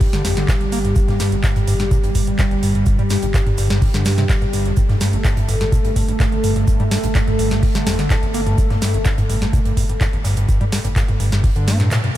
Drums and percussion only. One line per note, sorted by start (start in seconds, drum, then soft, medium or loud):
0.01 kick loud
0.01 closed hi-hat medium
0.01 open hi-hat medium
0.13 snare medium
0.13 closed hi-hat soft
0.25 snare medium
0.25 open hi-hat loud
0.25 shaker medium
0.37 snare medium
0.37 clap soft
0.37 closed hi-hat medium
0.48 kick loud
0.48 snare loud
0.48 clap loud
0.48 closed hi-hat medium
0.48 shaker medium
0.61 closed hi-hat soft
0.72 open hi-hat loud
0.72 shaker medium
0.85 closed hi-hat medium
0.96 kick loud
0.96 closed hi-hat medium
0.96 shaker medium
1.08 snare soft
1.08 closed hi-hat soft
1.08 mid tom medium
1.20 snare medium
1.20 open hi-hat loud
1.20 shaker medium
1.32 closed hi-hat medium
1.44 kick loud
1.44 snare loud
1.44 clap loud
1.44 closed hi-hat medium
1.44 shaker medium
1.56 closed hi-hat soft
1.56 mid tom medium
1.67 open hi-hat loud
1.67 shaker medium
1.80 snare medium
1.80 closed hi-hat medium
1.91 kick loud
1.91 closed hi-hat medium
1.91 shaker medium
2.04 closed hi-hat soft
2.15 kick medium
2.15 open hi-hat loud
2.15 shaker medium
2.27 closed hi-hat medium
2.39 kick loud
2.39 snare loud
2.39 clap loud
2.39 closed hi-hat medium
2.39 shaker medium
2.51 closed hi-hat soft
2.63 open hi-hat loud
2.63 shaker medium
2.75 closed hi-hat medium
2.86 kick loud
2.86 closed hi-hat medium
2.86 shaker medium
2.99 closed hi-hat soft
2.99 mid tom loud
3.10 snare medium
3.10 open hi-hat loud
3.10 shaker medium
3.22 closed hi-hat soft
3.22 closed hi-hat medium
3.34 kick loud
3.34 snare loud
3.34 clap loud
3.34 closed hi-hat medium
3.34 shaker loud
3.47 closed hi-hat soft
3.47 mid tom loud
3.57 open hi-hat loud
3.57 shaker medium
3.70 snare medium
3.70 snare soft
3.70 closed hi-hat medium
3.82 kick loud
3.82 closed hi-hat medium
3.82 open hi-hat medium
3.94 snare medium
3.94 closed hi-hat soft
4.05 snare medium
4.05 open hi-hat loud
4.05 shaker medium
4.18 snare medium
4.18 clap soft
4.18 closed hi-hat soft
4.29 kick loud
4.29 snare loud
4.29 clap loud
4.29 closed hi-hat soft
4.29 shaker medium
4.42 closed hi-hat soft
4.53 open hi-hat loud
4.53 shaker medium
4.66 closed hi-hat medium
4.77 kick loud
4.77 closed hi-hat medium
4.77 shaker medium
4.89 snare soft
4.89 closed hi-hat soft
4.89 mid tom loud
5.01 snare medium
5.01 open hi-hat loud
5.01 shaker medium
5.13 closed hi-hat medium
5.24 kick loud
5.24 snare loud
5.24 clap loud
5.24 closed hi-hat medium
5.24 shaker medium
5.37 closed hi-hat soft
5.37 mid tom loud
5.48 open hi-hat loud
5.48 shaker medium
5.61 snare medium
5.61 closed hi-hat medium
5.72 kick loud
5.72 closed hi-hat medium
5.72 shaker medium
5.85 closed hi-hat soft
5.96 kick medium
5.96 open hi-hat loud
5.96 shaker medium
6.08 closed hi-hat medium
6.20 kick loud
6.20 snare loud
6.20 clap loud
6.20 closed hi-hat medium
6.20 shaker medium
6.32 closed hi-hat soft
6.44 open hi-hat medium
6.44 shaker medium
6.56 closed hi-hat medium
6.68 kick loud
6.68 closed hi-hat medium
6.68 shaker medium
6.80 closed hi-hat soft
6.80 mid tom loud
6.91 snare medium
6.91 open hi-hat loud
6.91 shaker medium
7.03 closed hi-hat soft
7.03 closed hi-hat medium
7.15 kick loud
7.15 snare loud
7.15 clap loud
7.15 closed hi-hat medium
7.15 shaker medium
7.28 closed hi-hat soft
7.28 mid tom loud
7.39 open hi-hat medium
7.39 shaker medium
7.51 snare soft
7.51 snare medium
7.51 closed hi-hat medium
7.63 kick loud
7.63 closed hi-hat medium
7.63 open hi-hat medium
7.75 snare medium
7.75 closed hi-hat soft
7.87 snare medium
7.87 open hi-hat loud
7.87 shaker medium
7.99 snare medium
7.99 clap soft
7.99 closed hi-hat medium
8.10 kick loud
8.10 snare loud
8.10 clap loud
8.10 closed hi-hat medium
8.10 shaker medium
8.23 closed hi-hat soft
8.34 open hi-hat medium
8.34 shaker medium
8.47 closed hi-hat medium
8.58 kick loud
8.58 closed hi-hat medium
8.58 shaker medium
8.70 snare soft
8.70 closed hi-hat soft
8.70 mid tom loud
8.82 snare medium
8.82 open hi-hat loud
8.82 shaker medium
8.94 closed hi-hat medium
9.05 kick loud
9.05 snare loud
9.05 clap loud
9.05 closed hi-hat medium
9.05 shaker medium
9.18 closed hi-hat soft
9.18 mid tom loud
9.30 open hi-hat medium
9.30 shaker medium
9.42 snare medium
9.42 closed hi-hat medium
9.53 kick loud
9.53 closed hi-hat medium
9.53 shaker medium
9.65 closed hi-hat soft
9.77 kick medium
9.77 open hi-hat loud
9.77 shaker medium
9.89 closed hi-hat medium
10.01 kick loud
10.01 snare loud
10.01 clap loud
10.01 closed hi-hat medium
10.01 shaker medium
10.13 closed hi-hat soft
10.24 snare loud
10.24 open hi-hat medium
10.24 shaker medium
10.37 closed hi-hat soft
10.37 closed hi-hat medium
10.49 kick loud
10.49 closed hi-hat medium
10.49 shaker medium
10.61 closed hi-hat soft
10.61 mid tom medium
10.72 snare medium
10.72 open hi-hat loud
10.72 shaker medium
10.85 closed hi-hat soft
10.85 closed hi-hat medium
10.96 kick loud
10.96 snare loud
10.96 clap loud
10.96 closed hi-hat medium
10.96 shaker loud
11.08 closed hi-hat soft
11.08 mid tom medium
11.20 open hi-hat loud
11.20 shaker medium
11.32 snare medium
11.32 snare soft
11.32 closed hi-hat medium
11.44 kick loud
11.44 closed hi-hat medium
11.44 open hi-hat medium
11.56 closed hi-hat soft
11.68 snare medium
11.68 open hi-hat loud
11.68 high tom medium
11.68 shaker medium
11.80 snare medium
11.80 clap soft
11.80 closed hi-hat medium
11.91 snare loud
11.91 clap loud
11.91 closed hi-hat medium
11.91 mid tom medium
11.91 shaker medium
12.04 closed hi-hat soft
12.04 mid tom medium